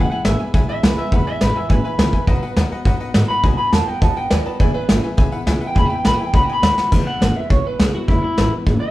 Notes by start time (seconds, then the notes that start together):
Already playing: B2 E3 G#3
0.10 E3 G#3 B3 E4 B4 E5 F#5 G#5, muted upright bass stroke
0.24 G#1 E2 B2 E3 G#3 B3 E4 B4 E5 G#5, snare
0.39 E3 G#3 B3 E4 B4 E5 G#5, muted upright bass stroke
0.54 B1 E3 G#3 B3 E4 B4 E5 G#5, kick, open hi-hat
0.68 E3 G#3 B3 E4 B4 E5 G#5, muted upright bass stroke
0.83 C#2 E2 B2 E3 G#3 B3 E4 B4 E5 G#5, snare, open hi-hat
0.97 E3 G#3 B3 E4 B4 E5 G#5
1.12 E1 E2 B2 E3 G#3 B3 E4 B4 E5 F#5, kick, open hi-hat
1.26 E3 B3 E4 B4 E5 G#5, muted upright bass stroke
1.41 A1 E2 B2 E3 G#3 B3 E4 B4 E5 B5, snare
1.54 E3 G#3 B3 E4 B4 E5 G#5
1.69 G#1 E3 G#3 B3 E4 B4 E5 G#5, kick, open hi-hat
1.84 E3 G#3 B3 E4 B4 E5 G#5
1.98 C#2 E2 B2 E3 G#3 B3 E4 B4 E5 G#5, snare, open hi-hat
2.13 E3 G#3 B3 E4 B4 E5 G#5, muted upright bass stroke, kick
2.27 B1 B2 F#3 B3 D#4 F#4 B4 D#5 F#5, kick, open hi-hat
2.42 B3 D#4 F#4 B4 D#5 F#5, muted upright bass stroke
2.56 D#2 B2 F#3 B3 D#4 F#4 B4 D#5 F#5, snare
2.71 B3 D#4 F#4 B4 D#5 F#5, muted upright bass stroke
2.85 F#2 F#3 B3 D#4 F#4 B4 D#5 F#5, kick, open hi-hat
2.99 B3 D#4 F#4 B4 D#5 F#5, muted upright bass stroke
3.14 G#2 B2 F#3 B3 D#4 F#4 B4 D#5 F#5, snare
3.28 B3 D#4 F#4 B4 D#5 F#5 B5, muted upright bass stroke
3.43 B1 B2 F#3 B3 D#4 F#4 B4 D#5 G#5, kick, open hi-hat
3.57 B3 D#4 F#4 B4 D#5 G#5 B5
3.72 E2 B2 F#3 B3 D#4 F#4 B4 D#5 F#5 A5, snare
3.86 B3 D#4 F#4 B4 D#5 F#5 G5, muted upright bass stroke
4.02 D#2 F#3 B3 D#4 F#4 B4 D#5 F#5 A5, kick, open hi-hat
4.16 B3 D#4 F#4 B4 D#5 F#5 G5, muted upright bass stroke
4.30 D#2 B2 F#3 B3 D#4 F#4 B4 D5 D#5 G#5, snare, open hi-hat
4.45 B3 D#4 F#4 B4 D#5 A5, muted upright bass stroke
4.60 E1 E2 B2 E3 B3 E4 G#4 B4 D5 E5 G#5, kick, open hi-hat
4.74 E3 B3 E4 G#4 B4 E5 G#5, muted upright bass stroke
4.89 G#1 E2 B2 E3 B3 E4 G#4 B4 E5 G#5, snare
5.03 E3 B3 E4 G#4 B4 E5 G#5, muted upright bass stroke
5.17 B1 E3 B3 E4 G#4 B4 E5 G#5, kick, open hi-hat
5.32 E3 B3 E4 G#4 B4 E5 F#5, muted upright bass stroke
5.46 C#2 E2 B2 E3 B3 E4 G#4 B4 E5 G#5, snare, open hi-hat
5.61 E3 B3 E4 G#4 B4 E5 F#5, muted upright bass stroke
5.67 G5
5.74 E1 E2 B2 E3 B3 E4 G#4 B4 E5 G#5 B5, kick, open hi-hat
5.85 G5
5.89 E3 B3 E4 G#4 B4 E5 B5, muted upright bass stroke
5.95 G5
6.04 A#1 E2 B2 E3 B3 E4 G#4 B4 E5 F#5 B5, snare
6.13 G5
6.18 E3 B3 E4 G#4 B4 E5 G#5, muted upright bass stroke
6.24 G5
6.33 B1 F#3 B3 D#4 F#4 B4 D#5 F#5 B5, kick, open hi-hat
6.43 F#4 G5
6.47 B3 D#4 B4 D#5 G#5, muted upright bass stroke
6.53 B5
6.62 D#2 B2 F#3 B3 D#4 F#4 B4 D#5 F#5, snare, open hi-hat
6.77 B3 D#4 F#4 B4 D#5 F#5, muted upright bass stroke, snare
6.92 E1 E2 B2 E3 G#3 B3 E4, kick, crash
7.06 E3 G#3 B3 E4 F#5, muted upright bass stroke
7.20 G#1 E2 B2 E3 G#3 B3 E4, snare, open hi-hat
7.35 E3 G#3 B3 E4 E5, muted upright bass stroke
7.49 B1 E3 G#3 B3 E4 C#5, kick, open hi-hat
7.64 E3 G#3 B3 E4 B4, muted upright bass stroke
7.79 C#2 E2 B2 E3 G#3 B3 E4 G#4, snare
7.93 E3 G#3 B3 E4 F#4, muted upright bass stroke
8.08 E1 E2 B2 E3 G#3 B3 E4, kick, open hi-hat
8.22 E3 G#3 B3 E4
8.37 A1 E2 B2 E3 G#3 B3 E4, snare
8.52 E3 G#3 B3 E4, muted upright bass stroke
8.67 G#1 E3 G#3 B3 E4, kick, open hi-hat
8.80 E3 G#3 B3 E4 E5, muted upright bass stroke